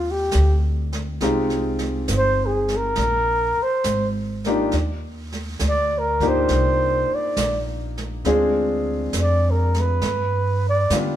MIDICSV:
0, 0, Header, 1, 6, 480
1, 0, Start_track
1, 0, Tempo, 882353
1, 657, Time_signature, 4, 2, 24, 8
1, 6072, End_track
2, 0, Start_track
2, 0, Title_t, "Flugelhorn"
2, 0, Program_c, 0, 56
2, 0, Note_on_c, 0, 65, 72
2, 62, Note_on_c, 0, 67, 58
2, 70, Note_off_c, 0, 65, 0
2, 310, Note_off_c, 0, 67, 0
2, 1181, Note_on_c, 0, 72, 92
2, 1339, Note_on_c, 0, 68, 71
2, 1347, Note_off_c, 0, 72, 0
2, 1505, Note_on_c, 0, 70, 88
2, 1513, Note_off_c, 0, 68, 0
2, 1974, Note_on_c, 0, 72, 76
2, 1982, Note_off_c, 0, 70, 0
2, 2221, Note_off_c, 0, 72, 0
2, 3093, Note_on_c, 0, 74, 89
2, 3257, Note_on_c, 0, 70, 78
2, 3265, Note_off_c, 0, 74, 0
2, 3418, Note_on_c, 0, 72, 85
2, 3426, Note_off_c, 0, 70, 0
2, 3890, Note_on_c, 0, 74, 72
2, 3898, Note_off_c, 0, 72, 0
2, 4139, Note_off_c, 0, 74, 0
2, 5014, Note_on_c, 0, 74, 73
2, 5173, Note_on_c, 0, 70, 69
2, 5181, Note_off_c, 0, 74, 0
2, 5332, Note_on_c, 0, 71, 79
2, 5340, Note_off_c, 0, 70, 0
2, 5793, Note_off_c, 0, 71, 0
2, 5816, Note_on_c, 0, 74, 70
2, 5967, Note_off_c, 0, 74, 0
2, 6072, End_track
3, 0, Start_track
3, 0, Title_t, "Grand piano"
3, 0, Program_c, 1, 0
3, 0, Control_c, 1, 64, 127
3, 0, Note_on_c, 1, 58, 56
3, 0, Note_on_c, 1, 60, 54
3, 0, Note_on_c, 1, 62, 59
3, 0, Note_on_c, 1, 63, 59
3, 90, Note_off_c, 1, 58, 0
3, 91, Note_off_c, 1, 60, 0
3, 91, Note_off_c, 1, 62, 0
3, 92, Note_off_c, 1, 63, 0
3, 663, Note_on_c, 1, 56, 58
3, 664, Control_c, 1, 64, 0
3, 664, Note_on_c, 1, 60, 56
3, 666, Note_on_c, 1, 63, 55
3, 666, Note_on_c, 1, 65, 55
3, 667, Note_on_c, 1, 67, 59
3, 751, Control_c, 1, 64, 127
3, 956, Note_off_c, 1, 56, 0
3, 956, Note_off_c, 1, 60, 0
3, 957, Note_off_c, 1, 63, 0
3, 957, Note_off_c, 1, 65, 0
3, 958, Note_off_c, 1, 67, 0
3, 1621, Control_c, 1, 64, 0
3, 1708, Control_c, 1, 64, 127
3, 2427, Note_on_c, 1, 58, 61
3, 2428, Note_on_c, 1, 62, 61
3, 2430, Note_on_c, 1, 63, 58
3, 2432, Note_on_c, 1, 67, 65
3, 2434, Note_on_c, 1, 65, 59
3, 2558, Note_off_c, 1, 58, 0
3, 2559, Note_off_c, 1, 62, 0
3, 2560, Note_off_c, 1, 63, 0
3, 2561, Note_off_c, 1, 67, 0
3, 2562, Note_off_c, 1, 65, 0
3, 2576, Control_c, 1, 64, 0
3, 2661, Control_c, 1, 64, 127
3, 3382, Note_on_c, 1, 58, 68
3, 3382, Note_on_c, 1, 62, 56
3, 3384, Note_on_c, 1, 63, 60
3, 3386, Note_on_c, 1, 65, 53
3, 3387, Note_on_c, 1, 67, 67
3, 3515, Note_off_c, 1, 58, 0
3, 3515, Note_off_c, 1, 62, 0
3, 3515, Note_off_c, 1, 63, 0
3, 3517, Note_off_c, 1, 65, 0
3, 3517, Note_off_c, 1, 67, 0
3, 4491, Note_on_c, 1, 56, 59
3, 4492, Note_on_c, 1, 60, 59
3, 4493, Note_on_c, 1, 62, 59
3, 4496, Control_c, 1, 64, 0
3, 4496, Note_on_c, 1, 65, 58
3, 4501, Note_on_c, 1, 68, 70
3, 4604, Control_c, 1, 64, 127
3, 4788, Note_off_c, 1, 56, 0
3, 4788, Note_off_c, 1, 60, 0
3, 4789, Note_off_c, 1, 62, 0
3, 4790, Note_off_c, 1, 65, 0
3, 4793, Note_off_c, 1, 68, 0
3, 5456, Control_c, 1, 64, 0
3, 5542, Control_c, 1, 64, 127
3, 5940, Note_on_c, 1, 55, 52
3, 5943, Note_on_c, 1, 59, 47
3, 5944, Note_on_c, 1, 62, 54
3, 5944, Note_on_c, 1, 65, 54
3, 5947, Note_on_c, 1, 67, 52
3, 6072, Note_off_c, 1, 55, 0
3, 6072, Note_off_c, 1, 59, 0
3, 6072, Note_off_c, 1, 62, 0
3, 6072, Note_off_c, 1, 65, 0
3, 6072, Note_off_c, 1, 67, 0
3, 6072, End_track
4, 0, Start_track
4, 0, Title_t, "Upright bass"
4, 0, Program_c, 2, 32
4, 0, Note_on_c, 2, 39, 77
4, 166, Note_off_c, 2, 39, 0
4, 188, Note_on_c, 2, 38, 88
4, 648, Note_off_c, 2, 38, 0
4, 657, Note_on_c, 2, 36, 71
4, 1121, Note_off_c, 2, 36, 0
4, 1136, Note_on_c, 2, 31, 96
4, 1600, Note_off_c, 2, 31, 0
4, 1616, Note_on_c, 2, 34, 88
4, 1922, Note_off_c, 2, 34, 0
4, 2092, Note_on_c, 2, 32, 96
4, 2555, Note_off_c, 2, 32, 0
4, 2571, Note_on_c, 2, 39, 74
4, 3035, Note_off_c, 2, 39, 0
4, 3048, Note_on_c, 2, 38, 88
4, 3513, Note_off_c, 2, 38, 0
4, 3532, Note_on_c, 2, 36, 82
4, 3838, Note_off_c, 2, 36, 0
4, 4007, Note_on_c, 2, 34, 89
4, 4474, Note_off_c, 2, 34, 0
4, 4486, Note_on_c, 2, 38, 76
4, 4954, Note_off_c, 2, 38, 0
4, 4967, Note_on_c, 2, 41, 88
4, 5435, Note_off_c, 2, 41, 0
4, 5449, Note_on_c, 2, 43, 80
4, 5919, Note_off_c, 2, 43, 0
4, 5932, Note_on_c, 2, 50, 83
4, 6072, Note_off_c, 2, 50, 0
4, 6072, End_track
5, 0, Start_track
5, 0, Title_t, "Muted upright bass strokes"
5, 1944, Note_on_c, 9, 29, 39
5, 1998, Note_off_c, 9, 29, 0
5, 3860, Note_on_c, 9, 29, 36
5, 3914, Note_off_c, 9, 29, 0
5, 6072, End_track
6, 0, Start_track
6, 0, Title_t, "Drums"
6, 171, Note_on_c, 9, 38, 52
6, 171, Note_on_c, 9, 44, 46
6, 225, Note_off_c, 9, 38, 0
6, 225, Note_off_c, 9, 44, 0
6, 503, Note_on_c, 9, 38, 35
6, 557, Note_off_c, 9, 38, 0
6, 655, Note_on_c, 9, 25, 38
6, 655, Note_on_c, 9, 38, 41
6, 710, Note_off_c, 9, 38, 0
6, 815, Note_on_c, 9, 38, 27
6, 869, Note_off_c, 9, 38, 0
6, 972, Note_on_c, 9, 38, 36
6, 1026, Note_off_c, 9, 38, 0
6, 1131, Note_on_c, 9, 38, 54
6, 1131, Note_on_c, 9, 44, 55
6, 1185, Note_off_c, 9, 38, 0
6, 1185, Note_off_c, 9, 44, 0
6, 1460, Note_on_c, 9, 38, 34
6, 1514, Note_off_c, 9, 38, 0
6, 1608, Note_off_c, 9, 25, 0
6, 1608, Note_on_c, 9, 25, 51
6, 1608, Note_on_c, 9, 38, 43
6, 1662, Note_off_c, 9, 38, 0
6, 2089, Note_on_c, 9, 38, 61
6, 2089, Note_on_c, 9, 44, 54
6, 2143, Note_off_c, 9, 38, 0
6, 2143, Note_off_c, 9, 44, 0
6, 2417, Note_on_c, 9, 38, 32
6, 2472, Note_off_c, 9, 38, 0
6, 2564, Note_off_c, 9, 25, 0
6, 2564, Note_on_c, 9, 25, 49
6, 2564, Note_on_c, 9, 38, 41
6, 2619, Note_off_c, 9, 38, 0
6, 2895, Note_on_c, 9, 38, 28
6, 2950, Note_off_c, 9, 38, 0
6, 3043, Note_on_c, 9, 38, 51
6, 3043, Note_on_c, 9, 44, 46
6, 3098, Note_off_c, 9, 38, 0
6, 3098, Note_off_c, 9, 44, 0
6, 3375, Note_on_c, 9, 36, 51
6, 3375, Note_on_c, 9, 38, 34
6, 3429, Note_off_c, 9, 38, 0
6, 3430, Note_off_c, 9, 36, 0
6, 3528, Note_off_c, 9, 25, 0
6, 3528, Note_on_c, 9, 25, 48
6, 3528, Note_on_c, 9, 38, 46
6, 3582, Note_off_c, 9, 38, 0
6, 4007, Note_on_c, 9, 38, 60
6, 4007, Note_on_c, 9, 44, 58
6, 4061, Note_off_c, 9, 38, 0
6, 4061, Note_off_c, 9, 44, 0
6, 4338, Note_on_c, 9, 38, 35
6, 4393, Note_off_c, 9, 38, 0
6, 4486, Note_off_c, 9, 25, 0
6, 4486, Note_on_c, 9, 25, 41
6, 4486, Note_on_c, 9, 38, 41
6, 4541, Note_off_c, 9, 38, 0
6, 4966, Note_on_c, 9, 38, 54
6, 4966, Note_on_c, 9, 44, 56
6, 5020, Note_off_c, 9, 38, 0
6, 5020, Note_off_c, 9, 44, 0
6, 5300, Note_on_c, 9, 38, 36
6, 5354, Note_off_c, 9, 38, 0
6, 5448, Note_off_c, 9, 25, 0
6, 5448, Note_on_c, 9, 25, 52
6, 5448, Note_on_c, 9, 38, 49
6, 5502, Note_off_c, 9, 38, 0
6, 5931, Note_on_c, 9, 38, 64
6, 5931, Note_on_c, 9, 44, 53
6, 5986, Note_off_c, 9, 38, 0
6, 5986, Note_off_c, 9, 44, 0
6, 6072, Note_off_c, 9, 25, 0
6, 6072, End_track
0, 0, End_of_file